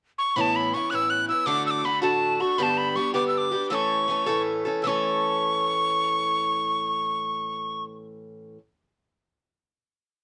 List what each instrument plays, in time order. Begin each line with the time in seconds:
0.18 tin whistle C#6
0.36 steel-string acoustic guitar A2 E3 B3 C#4 E4, tin whistle B5
0.41 tin whistle A5
0.56 tin whistle B5
0.74 steel-string acoustic guitar E3 B3 C#4 E4, tin whistle C#6
0.90 steel-string acoustic guitar A2 E3 B3 C#4 E4, tin whistle F#6
0.95 tin whistle E6
1.10 tin whistle F#6
1.28 steel-string acoustic guitar B3 C#4 E4, tin whistle E6
1.46 steel-string acoustic guitar A2 D3 A3 D4 F#4, tin whistle D6
1.66 tin whistle E6
1.71 tin whistle D6
1.84 steel-string acoustic guitar D3 A3 D4 F#4, tin whistle B5
2.02 steel-string acoustic guitar A2 D3 A3 D4 F#4, tin whistle A5
2.40 steel-string acoustic guitar A3 D4 F#4, tin whistle C#6
2.58 steel-string acoustic guitar G2 D3 G3 B3 D4 G4, tin whistle B5
2.63 tin whistle A5
2.78 tin whistle B5
2.95 steel-string acoustic guitar G3 B3 D4 G4, tin whistle C#6
3.14 steel-string acoustic guitar G2 D3 G3 B3 D4 G4, tin whistle D6
3.28 tin whistle E6
3.34 tin whistle D6 E6
3.51 steel-string acoustic guitar G3 B3 D4 G4
3.70 steel-string acoustic guitar A2 E3 A3 C#4 A4, tin whistle E6
3.74 tin whistle C#6
4.08 steel-string acoustic guitar E3 A3 C#4 A4
4.26 steel-string acoustic guitar A2 E3 A3 C#4 A4
4.65 steel-string acoustic guitar A3 C#4 A4
4.82 steel-string acoustic guitar A2 E3 A3, tin whistle E6
4.87 steel-string acoustic guitar C#4 A4, tin whistle C#6